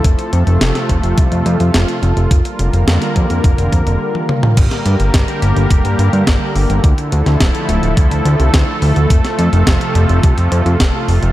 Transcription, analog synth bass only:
\new Staff \with { instrumentName = "Analog synth bass" } { \clef bass \time 4/4 \key bes \lydian \tempo 4 = 106 f,,16 r16 f,16 f,,16 f,,16 r16 f,,16 f,,16 c,16 f,16 f,16 f,16 f,,16 r16 f,,16 f,,16 | f,,16 r16 f,,16 f,,16 f,16 r16 f,16 f,16 f,,16 f,,16 f,16 f,,16 r4 | g,,16 r16 g,16 g,,16 g,,16 r16 g,,16 g,,16 f,,16 g,16 g,16 g,16 g,,16 r16 g,,16 g,,16 | d,16 r16 d,16 d,16 d,,16 r16 d,,16 d,,16 d,16 d,16 d,16 c,16 d,16 r16 d,16 d,16 |
f,,16 r16 f,16 f,,16 f,,16 r16 f,,16 f,,16 c,16 f,16 f,16 f,16 f,,16 r16 f,,16 f,,16 | }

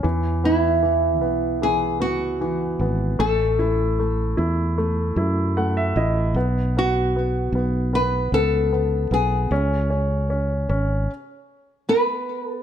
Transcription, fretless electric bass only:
\new Staff \with { instrumentName = "Fretless electric bass" } { \clef bass \time 4/4 \key a \lydian \tempo 4 = 76 e,4. b,,4 cis,4 gis,,8 | a,,4. e,4 fis,4 a,,8 | b,,4. b,,4 cis,4 b,,8 | cis,4. gis,,8 r2 | }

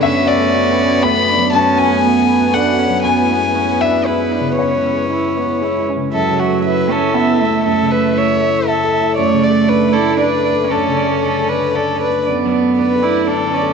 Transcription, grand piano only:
\new Staff \with { instrumentName = "Grand piano" } { \time 3/4 \key fis \minor \tempo 4 = 118 << { e''8 d''4. b''4 | a''8 gis''4. fis''4 | gis''4. e''8 b'4 | cis''2~ cis''8 r8 |
r2. | r2. | r2. | r2. |
r2. | } \\ { \tuplet 3/2 { fis,8 fis'8 a8 fis'8 b'8 fis'8 a8 fis'8 fis8 } | \tuplet 3/2 { fis,8 fis'8 a8 fis'8 b'8 fis'8 a8 fis'8 fis8 } | \tuplet 3/2 { fis,8 e'8 gis8 e'8 b'8 e'8 gis8 e'8 cis8 } | \tuplet 3/2 { fis,8 e'8 gis8 e'8 b'8 e'8 gis8 e'8 cis8 } |
\tuplet 3/2 { fis,8 cis8 a8 e'8 a'8 e'8 e''8 a'8 e'8 } | \tuplet 3/2 { fis,8 cis8 a8 e'8 a'8 e'8 e''8 a'8 e'8 } | \tuplet 3/2 { fis,8 cis8 a8 d'8 a'8 d'8 d''8 a'8 d'8 } | \tuplet 3/2 { fis,8 cis8 a8 d'8 a'8 d'8 d''8 a'8 d'8 } |
\tuplet 3/2 { fis,8 fis8 b8 d'8 a'8 b'8 d''4 a'8 } | } >> }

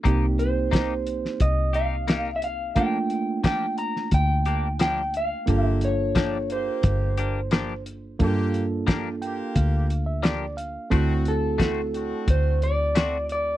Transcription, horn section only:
\new Staff \with { instrumentName = "Horn section" } { \time 4/4 \key c \mixolydian \tempo 4 = 88 r1 | r1 | <bes f' g'>8 r8. <f' g'>16 <bes f' g'>4 r4. | <bes f' g'>8 r8. <f' g'>16 <bes f' g'>4 r4. |
<c' d' fis'>8 r8. <d' fis'>16 <c' d' fis'>4 r4. | }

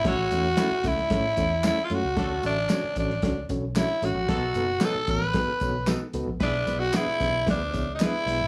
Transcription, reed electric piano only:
<<
  \new Staff \with { instrumentName = "Reed electric piano" } { \time 4/4 \key d \major \tempo 4 = 113 <a cis' e' a' cis''>16 r16 <a cis' e' a' cis''>16 r16 <a cis' e' a' e''>16 r16 <a cis' e' a' e''>16 r16 <a cis' e' a' cis''>16 r16 <a cis' e' a' cis''>16 r16 <a cis' e' a' e''>16 r16 <a cis' e' a' cis''>16 r16 | <cis' d' fis' a' cis''>16 r16 <cis' d' fis' a' e''>16 r16 <cis' d' fis' a' cis''>16 r16 <cis' d' fis' a' cis''>16 r16 <cis' d' fis' a' cis''>16 r16 <cis' d' fis' a' cis''>16 r16 <cis' d' fis' a' cis''>16 r16 <cis' d' fis' a' cis''>16 r16 | <b dis' fis' a' b'>16 r16 <b dis' fis' a' b'>16 r16 <b dis' fis' a' cis''>16 r16 <b dis' fis' a' cis''>16 r16 <b dis' fis' a' b'>16 r16 <b dis' fis' a' cis''>16 r16 <b dis' fis' a' b'>16 r16 <b dis' fis' a' b'>16 r16 | <b d' e' gis' b'>16 r16 <b d' e' gis' b'>16 r16 <b d' e' gis' b'>16 r16 <b d' e' gis' b'>16 r16 <b d' e' gis' b'>16 r16 <b d' e' gis' cis''>16 r16 <b d' e' gis' b'>16 r16 <b d' e' gis' b'>16 r16 | }
  \new Staff \with { instrumentName = "Reed electric piano" } { \clef bass \time 4/4 \key d \major a,4. r2 r8 | d4. r2 r8 | b,4. r2 r8 | b,4. r2 r8 | }
>>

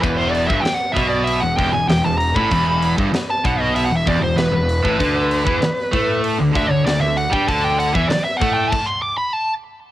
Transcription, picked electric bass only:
\new Staff \with { instrumentName = "Picked electric bass" } { \clef bass \time 4/4 \key e \minor \tempo 4 = 97 e,,8. g,,16 r8 b,,8. e,,16 e,,16 e,,16 e,,16 e,,8 a,,16 | e,,8. g,,16 r8 b,,8. e,,16 e,,16 e,,16 e,,16 e,,8 a,,16 | d,8. e,16 r8 a,8. d,16 d,16 d,16 d,16 d,8 g,16 | d,8. e,16 r8 a,8 r2 | }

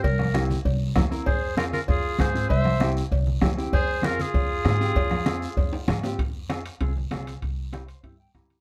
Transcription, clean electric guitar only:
\new Staff \with { instrumentName = "Clean electric guitar" } { \time 4/4 \key f \minor \tempo 4 = 195 << { r1 | r1 | r1 | r1 |
r1 | r1 | r4. c''8 e''8 g''8 bes''4 | } \\ { r4 <c' e' g'>8 r4. <c' e' bes'>8 <c' e' bes'>8 | r4 <c' f' aes'>8 r4. <c' f' aes'>8 <c' f' aes'>8 | r4 <c' e' g'>8 r4. <c' e' g'>8 <c' e' g'>8 | r4 <c' f' aes'>8 r4. <c' f' aes'>8 <c' f' g'>8 |
r4 <c' f' aes'>8 r4. <c' f' aes'>8 <c' f' g'>8 | r4 <c' f' aes'>8 r8 <c' f' aes'>8 r8 <c' f' aes'>8 r8 | r4 <c' e' g'>8 r8 <c' e' g'>8 r8 <c' e' g'>8 r8 | } >> }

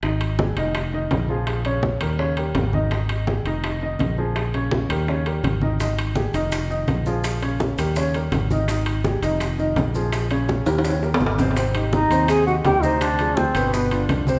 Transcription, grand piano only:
\new Staff \with { instrumentName = "Grand piano" } { \time 4/4 \key aes \major \tempo 4 = 166 <ees ees' ees''>4 <g g' aes'>8 <ees ees' ees''>4 <ees ees' ees''>4 <f f' aes'>8~ | <f f' aes'>8 <des des' des''>4 <g g' bes'>8 <des des' des''>8 <g g' bes'>4 <ees ees' ees''>8 | <ees ees' ees''>4 <g g' aes'>8 <ees ees' ees''>4 <ees ees' ees''>4 <f f' aes'>8~ | <f f' aes'>8 <des des' des''>4 <g g' bes'>8 <des des' des''>8 <g g' bes'>4 <ees ees' ees''>8 |
<ees ees' ees''>4 <g g' aes'>8 <ees ees' ees''>4 <ees ees' ees''>4 <f f' aes'>8~ | <f f' aes'>8 <des des' des''>4 <g g' bes'>8 <des des' des''>8 <g g' bes'>4 <ees ees' ees''>8 | <ees ees' ees''>4 <g g' aes'>8 <ees ees' ees''>4 <ees ees' ees''>4 <f f' aes'>8~ | <f f' aes'>8 <des des' des''>4 <g g' bes'>8 <des des' des''>8 <g g' bes'>4 <c c' c''>8 |
<c c' c''>8 <ees ees' g'>4 <c c' c''>4 <ees ees' g'>8 <ees ees' g'>8 <c c' c''>8~ | <c c' c''>8 <f f' aes'>4 <ces ces' ces''>4 <d d' f'>4 <c c' c''>8 | }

